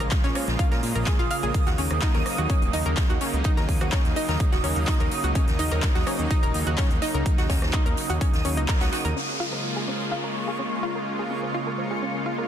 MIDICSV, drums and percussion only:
0, 0, Header, 1, 2, 480
1, 0, Start_track
1, 0, Key_signature, -6, "minor"
1, 0, Tempo, 476190
1, 1556, Time_signature, 4, 2, 24, 8
1, 12579, End_track
2, 0, Start_track
2, 0, Title_t, "Drums"
2, 2, Note_on_c, 9, 37, 65
2, 2, Note_on_c, 9, 42, 38
2, 103, Note_off_c, 9, 37, 0
2, 103, Note_off_c, 9, 42, 0
2, 107, Note_on_c, 9, 42, 84
2, 112, Note_on_c, 9, 39, 116
2, 115, Note_on_c, 9, 38, 110
2, 116, Note_off_c, 9, 42, 0
2, 116, Note_on_c, 9, 36, 123
2, 116, Note_on_c, 9, 42, 88
2, 213, Note_off_c, 9, 39, 0
2, 216, Note_off_c, 9, 38, 0
2, 217, Note_off_c, 9, 36, 0
2, 217, Note_off_c, 9, 42, 0
2, 241, Note_on_c, 9, 38, 50
2, 241, Note_on_c, 9, 42, 37
2, 342, Note_off_c, 9, 38, 0
2, 342, Note_off_c, 9, 42, 0
2, 353, Note_on_c, 9, 42, 71
2, 356, Note_on_c, 9, 37, 81
2, 356, Note_on_c, 9, 46, 97
2, 454, Note_off_c, 9, 42, 0
2, 457, Note_off_c, 9, 37, 0
2, 457, Note_off_c, 9, 46, 0
2, 482, Note_on_c, 9, 42, 37
2, 483, Note_on_c, 9, 38, 45
2, 582, Note_off_c, 9, 42, 0
2, 583, Note_off_c, 9, 38, 0
2, 596, Note_on_c, 9, 36, 121
2, 596, Note_on_c, 9, 42, 88
2, 602, Note_off_c, 9, 42, 0
2, 602, Note_on_c, 9, 42, 87
2, 697, Note_off_c, 9, 36, 0
2, 703, Note_off_c, 9, 42, 0
2, 720, Note_on_c, 9, 38, 46
2, 722, Note_on_c, 9, 42, 34
2, 821, Note_off_c, 9, 38, 0
2, 823, Note_off_c, 9, 42, 0
2, 836, Note_on_c, 9, 46, 105
2, 843, Note_on_c, 9, 42, 76
2, 937, Note_off_c, 9, 46, 0
2, 943, Note_off_c, 9, 42, 0
2, 962, Note_on_c, 9, 42, 37
2, 1063, Note_off_c, 9, 42, 0
2, 1073, Note_on_c, 9, 39, 108
2, 1076, Note_on_c, 9, 36, 119
2, 1076, Note_on_c, 9, 42, 82
2, 1078, Note_on_c, 9, 38, 106
2, 1081, Note_off_c, 9, 42, 0
2, 1081, Note_on_c, 9, 42, 84
2, 1173, Note_off_c, 9, 39, 0
2, 1177, Note_off_c, 9, 36, 0
2, 1178, Note_off_c, 9, 38, 0
2, 1182, Note_off_c, 9, 42, 0
2, 1202, Note_on_c, 9, 42, 37
2, 1303, Note_off_c, 9, 42, 0
2, 1316, Note_on_c, 9, 46, 100
2, 1319, Note_on_c, 9, 42, 80
2, 1417, Note_off_c, 9, 46, 0
2, 1420, Note_off_c, 9, 42, 0
2, 1442, Note_on_c, 9, 42, 37
2, 1543, Note_off_c, 9, 42, 0
2, 1556, Note_on_c, 9, 36, 115
2, 1556, Note_on_c, 9, 42, 84
2, 1558, Note_off_c, 9, 42, 0
2, 1558, Note_on_c, 9, 42, 88
2, 1657, Note_off_c, 9, 36, 0
2, 1659, Note_off_c, 9, 42, 0
2, 1678, Note_on_c, 9, 38, 39
2, 1681, Note_on_c, 9, 42, 37
2, 1779, Note_off_c, 9, 38, 0
2, 1782, Note_off_c, 9, 42, 0
2, 1796, Note_on_c, 9, 46, 105
2, 1805, Note_on_c, 9, 42, 66
2, 1897, Note_off_c, 9, 46, 0
2, 1905, Note_off_c, 9, 42, 0
2, 1921, Note_on_c, 9, 37, 68
2, 1921, Note_on_c, 9, 42, 37
2, 1924, Note_off_c, 9, 42, 0
2, 1924, Note_on_c, 9, 42, 38
2, 2022, Note_off_c, 9, 37, 0
2, 2025, Note_off_c, 9, 42, 0
2, 2032, Note_on_c, 9, 39, 111
2, 2036, Note_on_c, 9, 36, 119
2, 2036, Note_on_c, 9, 42, 83
2, 2041, Note_on_c, 9, 38, 120
2, 2046, Note_off_c, 9, 42, 0
2, 2046, Note_on_c, 9, 42, 78
2, 2133, Note_off_c, 9, 39, 0
2, 2137, Note_off_c, 9, 36, 0
2, 2142, Note_off_c, 9, 38, 0
2, 2147, Note_off_c, 9, 42, 0
2, 2162, Note_on_c, 9, 42, 37
2, 2170, Note_on_c, 9, 38, 52
2, 2262, Note_off_c, 9, 42, 0
2, 2270, Note_off_c, 9, 38, 0
2, 2276, Note_on_c, 9, 37, 79
2, 2276, Note_on_c, 9, 46, 96
2, 2283, Note_on_c, 9, 42, 69
2, 2377, Note_off_c, 9, 37, 0
2, 2377, Note_off_c, 9, 46, 0
2, 2383, Note_off_c, 9, 42, 0
2, 2401, Note_on_c, 9, 42, 36
2, 2502, Note_off_c, 9, 42, 0
2, 2516, Note_on_c, 9, 36, 120
2, 2516, Note_on_c, 9, 42, 90
2, 2519, Note_off_c, 9, 42, 0
2, 2519, Note_on_c, 9, 42, 89
2, 2617, Note_off_c, 9, 36, 0
2, 2620, Note_off_c, 9, 42, 0
2, 2642, Note_on_c, 9, 42, 34
2, 2644, Note_off_c, 9, 42, 0
2, 2644, Note_on_c, 9, 42, 45
2, 2745, Note_off_c, 9, 42, 0
2, 2752, Note_on_c, 9, 42, 71
2, 2756, Note_on_c, 9, 46, 106
2, 2853, Note_off_c, 9, 42, 0
2, 2857, Note_off_c, 9, 46, 0
2, 2882, Note_on_c, 9, 42, 38
2, 2983, Note_off_c, 9, 42, 0
2, 2993, Note_on_c, 9, 39, 110
2, 2996, Note_on_c, 9, 36, 113
2, 2997, Note_on_c, 9, 42, 83
2, 3004, Note_on_c, 9, 38, 116
2, 3007, Note_off_c, 9, 42, 0
2, 3007, Note_on_c, 9, 42, 86
2, 3094, Note_off_c, 9, 39, 0
2, 3097, Note_off_c, 9, 36, 0
2, 3104, Note_off_c, 9, 38, 0
2, 3108, Note_off_c, 9, 42, 0
2, 3122, Note_on_c, 9, 42, 37
2, 3223, Note_off_c, 9, 42, 0
2, 3232, Note_on_c, 9, 42, 65
2, 3236, Note_on_c, 9, 38, 39
2, 3236, Note_on_c, 9, 46, 95
2, 3333, Note_off_c, 9, 42, 0
2, 3337, Note_off_c, 9, 38, 0
2, 3337, Note_off_c, 9, 46, 0
2, 3362, Note_on_c, 9, 42, 36
2, 3463, Note_off_c, 9, 42, 0
2, 3468, Note_on_c, 9, 42, 87
2, 3476, Note_off_c, 9, 42, 0
2, 3476, Note_on_c, 9, 36, 117
2, 3476, Note_on_c, 9, 42, 87
2, 3577, Note_off_c, 9, 36, 0
2, 3577, Note_off_c, 9, 42, 0
2, 3599, Note_on_c, 9, 38, 35
2, 3602, Note_on_c, 9, 42, 39
2, 3700, Note_off_c, 9, 38, 0
2, 3703, Note_off_c, 9, 42, 0
2, 3713, Note_on_c, 9, 42, 71
2, 3716, Note_on_c, 9, 36, 58
2, 3716, Note_on_c, 9, 46, 96
2, 3813, Note_off_c, 9, 42, 0
2, 3817, Note_off_c, 9, 36, 0
2, 3817, Note_off_c, 9, 46, 0
2, 3841, Note_on_c, 9, 37, 68
2, 3841, Note_on_c, 9, 42, 38
2, 3942, Note_off_c, 9, 37, 0
2, 3942, Note_off_c, 9, 42, 0
2, 3952, Note_on_c, 9, 39, 111
2, 3952, Note_on_c, 9, 42, 84
2, 3956, Note_off_c, 9, 42, 0
2, 3956, Note_on_c, 9, 36, 120
2, 3956, Note_on_c, 9, 42, 87
2, 3964, Note_on_c, 9, 38, 125
2, 4053, Note_off_c, 9, 39, 0
2, 4057, Note_off_c, 9, 36, 0
2, 4057, Note_off_c, 9, 42, 0
2, 4065, Note_off_c, 9, 38, 0
2, 4079, Note_on_c, 9, 38, 51
2, 4081, Note_on_c, 9, 42, 40
2, 4180, Note_off_c, 9, 38, 0
2, 4182, Note_off_c, 9, 42, 0
2, 4197, Note_on_c, 9, 46, 91
2, 4205, Note_on_c, 9, 42, 65
2, 4297, Note_off_c, 9, 46, 0
2, 4306, Note_off_c, 9, 42, 0
2, 4321, Note_on_c, 9, 42, 38
2, 4324, Note_on_c, 9, 38, 50
2, 4422, Note_off_c, 9, 42, 0
2, 4425, Note_off_c, 9, 38, 0
2, 4436, Note_on_c, 9, 36, 117
2, 4436, Note_on_c, 9, 42, 89
2, 4438, Note_off_c, 9, 42, 0
2, 4438, Note_on_c, 9, 42, 80
2, 4537, Note_off_c, 9, 36, 0
2, 4539, Note_off_c, 9, 42, 0
2, 4557, Note_on_c, 9, 38, 47
2, 4561, Note_on_c, 9, 42, 35
2, 4658, Note_off_c, 9, 38, 0
2, 4662, Note_off_c, 9, 42, 0
2, 4672, Note_on_c, 9, 42, 73
2, 4676, Note_on_c, 9, 46, 101
2, 4773, Note_off_c, 9, 42, 0
2, 4776, Note_off_c, 9, 46, 0
2, 4801, Note_on_c, 9, 42, 39
2, 4901, Note_off_c, 9, 42, 0
2, 4911, Note_on_c, 9, 39, 108
2, 4915, Note_on_c, 9, 42, 90
2, 4916, Note_on_c, 9, 36, 109
2, 4920, Note_on_c, 9, 38, 121
2, 5012, Note_off_c, 9, 39, 0
2, 5016, Note_off_c, 9, 42, 0
2, 5017, Note_off_c, 9, 36, 0
2, 5021, Note_off_c, 9, 38, 0
2, 5041, Note_on_c, 9, 42, 39
2, 5142, Note_off_c, 9, 42, 0
2, 5156, Note_on_c, 9, 42, 73
2, 5156, Note_on_c, 9, 46, 92
2, 5256, Note_off_c, 9, 46, 0
2, 5257, Note_off_c, 9, 42, 0
2, 5281, Note_on_c, 9, 42, 38
2, 5382, Note_off_c, 9, 42, 0
2, 5395, Note_on_c, 9, 42, 97
2, 5396, Note_on_c, 9, 36, 112
2, 5398, Note_off_c, 9, 42, 0
2, 5398, Note_on_c, 9, 42, 97
2, 5497, Note_off_c, 9, 36, 0
2, 5499, Note_off_c, 9, 42, 0
2, 5517, Note_on_c, 9, 38, 38
2, 5521, Note_on_c, 9, 42, 41
2, 5618, Note_off_c, 9, 38, 0
2, 5622, Note_off_c, 9, 42, 0
2, 5634, Note_on_c, 9, 42, 66
2, 5635, Note_on_c, 9, 46, 100
2, 5735, Note_off_c, 9, 42, 0
2, 5736, Note_off_c, 9, 46, 0
2, 5760, Note_on_c, 9, 42, 42
2, 5761, Note_off_c, 9, 42, 0
2, 5761, Note_on_c, 9, 37, 65
2, 5761, Note_on_c, 9, 42, 40
2, 5861, Note_off_c, 9, 37, 0
2, 5861, Note_off_c, 9, 42, 0
2, 5870, Note_on_c, 9, 38, 120
2, 5871, Note_on_c, 9, 39, 113
2, 5875, Note_on_c, 9, 42, 94
2, 5876, Note_off_c, 9, 42, 0
2, 5876, Note_on_c, 9, 36, 114
2, 5876, Note_on_c, 9, 42, 91
2, 5970, Note_off_c, 9, 38, 0
2, 5972, Note_off_c, 9, 39, 0
2, 5977, Note_off_c, 9, 36, 0
2, 5977, Note_off_c, 9, 42, 0
2, 5999, Note_on_c, 9, 38, 51
2, 6001, Note_on_c, 9, 42, 40
2, 6100, Note_off_c, 9, 38, 0
2, 6102, Note_off_c, 9, 42, 0
2, 6116, Note_on_c, 9, 37, 82
2, 6116, Note_on_c, 9, 42, 72
2, 6116, Note_on_c, 9, 46, 90
2, 6216, Note_off_c, 9, 37, 0
2, 6216, Note_off_c, 9, 42, 0
2, 6216, Note_off_c, 9, 46, 0
2, 6241, Note_on_c, 9, 42, 40
2, 6342, Note_off_c, 9, 42, 0
2, 6355, Note_on_c, 9, 42, 82
2, 6356, Note_off_c, 9, 42, 0
2, 6356, Note_on_c, 9, 36, 111
2, 6356, Note_on_c, 9, 42, 93
2, 6457, Note_off_c, 9, 36, 0
2, 6457, Note_off_c, 9, 42, 0
2, 6481, Note_on_c, 9, 42, 38
2, 6485, Note_off_c, 9, 42, 0
2, 6485, Note_on_c, 9, 42, 43
2, 6586, Note_off_c, 9, 42, 0
2, 6595, Note_on_c, 9, 46, 101
2, 6603, Note_on_c, 9, 42, 69
2, 6696, Note_off_c, 9, 46, 0
2, 6704, Note_off_c, 9, 42, 0
2, 6721, Note_on_c, 9, 42, 42
2, 6822, Note_off_c, 9, 42, 0
2, 6832, Note_on_c, 9, 39, 110
2, 6833, Note_on_c, 9, 38, 114
2, 6836, Note_on_c, 9, 36, 109
2, 6836, Note_on_c, 9, 42, 93
2, 6841, Note_off_c, 9, 42, 0
2, 6841, Note_on_c, 9, 42, 83
2, 6933, Note_off_c, 9, 39, 0
2, 6934, Note_off_c, 9, 38, 0
2, 6937, Note_off_c, 9, 36, 0
2, 6942, Note_off_c, 9, 42, 0
2, 6961, Note_on_c, 9, 42, 41
2, 7062, Note_off_c, 9, 42, 0
2, 7073, Note_on_c, 9, 42, 74
2, 7076, Note_on_c, 9, 46, 91
2, 7079, Note_on_c, 9, 38, 39
2, 7174, Note_off_c, 9, 42, 0
2, 7177, Note_off_c, 9, 46, 0
2, 7179, Note_off_c, 9, 38, 0
2, 7201, Note_on_c, 9, 42, 41
2, 7302, Note_off_c, 9, 42, 0
2, 7314, Note_on_c, 9, 42, 83
2, 7316, Note_off_c, 9, 42, 0
2, 7316, Note_on_c, 9, 36, 117
2, 7316, Note_on_c, 9, 42, 97
2, 7417, Note_off_c, 9, 36, 0
2, 7417, Note_off_c, 9, 42, 0
2, 7439, Note_on_c, 9, 38, 41
2, 7442, Note_on_c, 9, 42, 42
2, 7539, Note_off_c, 9, 38, 0
2, 7542, Note_off_c, 9, 42, 0
2, 7554, Note_on_c, 9, 42, 79
2, 7556, Note_on_c, 9, 36, 58
2, 7556, Note_on_c, 9, 46, 100
2, 7557, Note_on_c, 9, 38, 96
2, 7655, Note_off_c, 9, 42, 0
2, 7657, Note_off_c, 9, 36, 0
2, 7657, Note_off_c, 9, 46, 0
2, 7658, Note_off_c, 9, 38, 0
2, 7682, Note_on_c, 9, 37, 63
2, 7682, Note_on_c, 9, 42, 42
2, 7687, Note_on_c, 9, 38, 51
2, 7783, Note_off_c, 9, 37, 0
2, 7783, Note_off_c, 9, 42, 0
2, 7788, Note_off_c, 9, 38, 0
2, 7793, Note_on_c, 9, 39, 114
2, 7793, Note_on_c, 9, 42, 56
2, 7796, Note_on_c, 9, 36, 121
2, 7797, Note_off_c, 9, 42, 0
2, 7797, Note_on_c, 9, 42, 97
2, 7894, Note_off_c, 9, 39, 0
2, 7897, Note_off_c, 9, 36, 0
2, 7898, Note_off_c, 9, 42, 0
2, 7922, Note_on_c, 9, 42, 39
2, 8023, Note_off_c, 9, 42, 0
2, 8037, Note_on_c, 9, 46, 92
2, 8041, Note_on_c, 9, 42, 75
2, 8138, Note_off_c, 9, 46, 0
2, 8142, Note_off_c, 9, 42, 0
2, 8162, Note_on_c, 9, 42, 41
2, 8168, Note_off_c, 9, 42, 0
2, 8168, Note_on_c, 9, 42, 42
2, 8268, Note_off_c, 9, 42, 0
2, 8276, Note_on_c, 9, 36, 113
2, 8276, Note_on_c, 9, 42, 95
2, 8280, Note_off_c, 9, 42, 0
2, 8280, Note_on_c, 9, 42, 96
2, 8377, Note_off_c, 9, 36, 0
2, 8381, Note_off_c, 9, 42, 0
2, 8402, Note_on_c, 9, 42, 38
2, 8406, Note_on_c, 9, 38, 50
2, 8503, Note_off_c, 9, 42, 0
2, 8507, Note_off_c, 9, 38, 0
2, 8516, Note_on_c, 9, 46, 99
2, 8521, Note_on_c, 9, 42, 71
2, 8617, Note_off_c, 9, 46, 0
2, 8622, Note_off_c, 9, 42, 0
2, 8642, Note_on_c, 9, 42, 42
2, 8743, Note_off_c, 9, 42, 0
2, 8752, Note_on_c, 9, 42, 76
2, 8753, Note_on_c, 9, 39, 111
2, 8757, Note_off_c, 9, 42, 0
2, 8757, Note_on_c, 9, 36, 112
2, 8757, Note_on_c, 9, 42, 94
2, 8759, Note_on_c, 9, 38, 109
2, 8853, Note_off_c, 9, 39, 0
2, 8857, Note_off_c, 9, 36, 0
2, 8858, Note_off_c, 9, 42, 0
2, 8860, Note_off_c, 9, 38, 0
2, 8873, Note_on_c, 9, 42, 76
2, 8881, Note_on_c, 9, 38, 114
2, 8883, Note_off_c, 9, 42, 0
2, 8883, Note_on_c, 9, 42, 43
2, 8981, Note_off_c, 9, 38, 0
2, 8983, Note_off_c, 9, 42, 0
2, 8996, Note_on_c, 9, 42, 86
2, 8997, Note_on_c, 9, 46, 91
2, 9002, Note_on_c, 9, 38, 104
2, 9097, Note_off_c, 9, 42, 0
2, 9098, Note_off_c, 9, 46, 0
2, 9103, Note_off_c, 9, 38, 0
2, 9122, Note_on_c, 9, 42, 41
2, 9125, Note_off_c, 9, 42, 0
2, 9125, Note_on_c, 9, 42, 39
2, 9226, Note_off_c, 9, 42, 0
2, 9232, Note_on_c, 9, 42, 90
2, 9332, Note_off_c, 9, 42, 0
2, 9363, Note_on_c, 9, 38, 39
2, 9464, Note_off_c, 9, 38, 0
2, 9602, Note_on_c, 9, 37, 57
2, 9703, Note_off_c, 9, 37, 0
2, 9844, Note_on_c, 9, 38, 46
2, 9945, Note_off_c, 9, 38, 0
2, 9957, Note_on_c, 9, 37, 70
2, 10058, Note_off_c, 9, 37, 0
2, 10439, Note_on_c, 9, 42, 69
2, 10540, Note_off_c, 9, 42, 0
2, 10678, Note_on_c, 9, 42, 80
2, 10779, Note_off_c, 9, 42, 0
2, 10923, Note_on_c, 9, 38, 40
2, 11024, Note_off_c, 9, 38, 0
2, 11157, Note_on_c, 9, 42, 84
2, 11257, Note_off_c, 9, 42, 0
2, 11284, Note_on_c, 9, 38, 37
2, 11385, Note_off_c, 9, 38, 0
2, 11522, Note_on_c, 9, 37, 57
2, 11623, Note_off_c, 9, 37, 0
2, 11768, Note_on_c, 9, 38, 43
2, 11869, Note_off_c, 9, 38, 0
2, 11877, Note_on_c, 9, 37, 74
2, 11978, Note_off_c, 9, 37, 0
2, 12004, Note_on_c, 9, 38, 43
2, 12105, Note_off_c, 9, 38, 0
2, 12118, Note_on_c, 9, 42, 79
2, 12218, Note_off_c, 9, 42, 0
2, 12243, Note_on_c, 9, 38, 42
2, 12344, Note_off_c, 9, 38, 0
2, 12579, End_track
0, 0, End_of_file